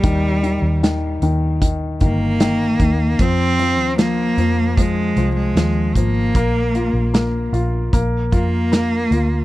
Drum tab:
HH |xxxxxxxx|xxxxxxxx|xxxxxxxx|
SD |--o---o-|--o---o-|--o---o-|
BD |o---oo-o|o---o--o|o---oo--|